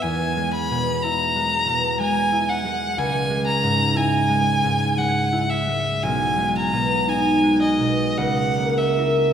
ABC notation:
X:1
M:3/4
L:1/8
Q:1/4=59
K:C#dor
V:1 name="Violin"
g b a2 g f | g a g2 f e | g a g d f e |]
V:2 name="Harp" clef=bass
(3[E,,G,B,E] G, B,, (3E G, B,, (3G, E G, | (3C,, G, G,, (3E G, G,, (3G, E G, | (3B,,, G, B,, (3D G, B,, (3C,, A, [EA] |]